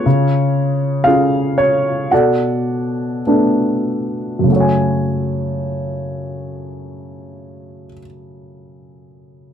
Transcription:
0.00 1.05 F4 soft
0.00 1.06 G#4 soft
0.00 1.09 C#5 medium
0.06 2.08 C#3 medium
1.04 2.09 C#4 soft
1.04 2.09 F4 soft
1.04 2.10 G#4 soft
1.04 1.59 F5 medium
1.58 2.08 C#5 medium
2.11 4.46 B2 soft
2.11 4.46 A4 soft
2.11 4.46 D5 soft
2.11 3.22 F#5 medium
3.27 4.46 A3 soft
3.27 4.46 B3 soft
3.27 4.46 D4 soft
4.39 7.84 F#2 soft
4.44 7.88 C#3 soft
4.48 7.93 A3 soft
4.48 7.96 F#4 soft
4.56 8.00 C#5 soft
4.60 8.05 G#5 soft

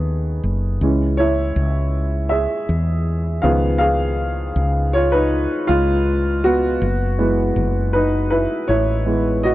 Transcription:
0.00 0.40 D#2 medium
0.00 0.83 B3 soft
0.00 0.83 G#4 soft
0.44 0.78 F#1 medium
0.81 1.52 C#2 medium
0.81 1.32 E3 soft
0.81 1.32 G#3 soft
0.81 1.32 C#4 soft
1.17 2.27 E4 medium
1.17 2.34 C#5 medium
1.56 2.46 C#2 medium
2.29 3.40 G#4 medium
2.29 3.46 E5 medium
2.69 3.40 E2 medium
3.42 4.52 C#2 medium
3.42 3.93 D#3 soft
3.42 3.93 F3 soft
3.42 3.94 B3 medium
3.42 3.79 G#4 medium
3.42 3.77 F5 medium
3.78 4.89 G#4 medium
3.78 4.96 F5 medium
4.56 5.46 C#2 medium
4.93 5.00 F4 medium
4.93 4.98 C#5 medium
5.12 5.66 D#4 medium
5.12 5.70 B4 medium
5.67 6.77 C#2 medium
5.67 6.40 G#3 medium
5.67 6.45 F4 medium
6.44 7.18 B3 soft
6.44 7.98 F#4 medium
6.82 7.52 F#1 medium
7.18 7.68 E3 soft
7.18 7.68 G#3 soft
7.18 7.69 B3 medium
7.56 8.46 F#1 medium
7.93 8.29 D#4 medium
7.93 8.29 B4 medium
8.30 8.66 E4 medium
8.30 8.69 B4 medium
8.68 9.55 A1 medium
8.68 9.40 E4 medium
8.68 9.45 C#5 medium
9.06 9.39 E3 soft
9.06 9.40 G#3 soft
9.06 9.40 B3 soft
9.43 9.55 F#4 medium
9.43 9.55 D#5 medium

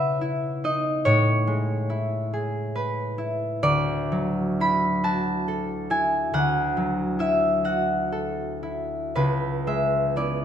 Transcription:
0.00 1.09 C#3 medium
0.00 2.76 B3 soft
0.00 1.80 C#4 soft
0.00 0.20 E4 soft
0.00 2.74 B4 soft
0.00 1.04 C#5 medium
0.00 0.63 D#5 medium
0.00 3.68 E5 medium
0.21 1.88 E4 soft
0.64 1.09 D#4 soft
0.64 1.10 D#5 medium
1.05 3.66 A2 medium
1.05 3.66 C#5 medium
1.47 3.66 G#3 soft
1.90 3.17 E4 soft
2.33 3.67 G#4 medium
2.75 3.67 B4 medium
3.18 4.59 E4 medium
3.63 6.32 D2 medium
3.63 7.53 D5 loud
4.12 6.76 F#3 medium
4.60 5.89 E4 soft
4.60 5.36 B5 medium
5.04 7.63 F#4 medium
5.04 8.94 A5 medium
5.48 8.11 A4 medium
5.90 7.18 E4 medium
5.90 6.64 G#5 medium
6.34 9.21 D2 medium
6.34 7.64 F#5 medium
6.77 9.21 F#3 soft
7.19 8.62 E4 soft
7.19 9.66 E5 medium
7.64 9.20 F#4 medium
7.64 9.20 F#5 medium
8.12 9.20 A4 soft
8.63 10.16 E4 soft
9.15 10.45 C#2 medium
9.15 10.45 B4 medium
9.67 10.45 G#3 soft
9.67 10.45 E5 medium
10.16 10.45 B3 soft
10.16 10.45 E4 soft
10.16 10.45 D5 medium

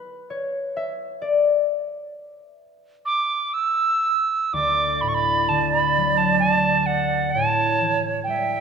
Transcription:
0.00 1.89 B4 medium
0.30 1.28 C#5 medium
0.77 2.49 E5 medium
1.22 4.00 D5 medium
3.05 3.55 D6 medium
3.54 4.55 E6 medium
4.53 7.40 D2 medium
4.53 7.31 D5 medium
4.53 5.03 D6 medium
5.01 5.55 A2 soft
5.01 5.10 B5 medium
5.08 5.16 C#6 medium
5.14 5.50 B5 medium
5.49 6.43 D3 soft
5.49 5.72 A5 medium
5.72 6.19 B5 medium
5.97 6.47 F#3 soft
6.17 6.39 A5 medium
6.39 6.88 A5 medium
6.44 7.40 D3 soft
6.86 7.33 F#5 medium
7.31 8.23 C#5 medium
7.31 7.99 A5 medium
7.35 8.60 A2 medium
7.81 8.60 E3 soft
8.24 8.60 G3 soft
8.24 8.60 G5 medium
8.28 8.60 E5 medium

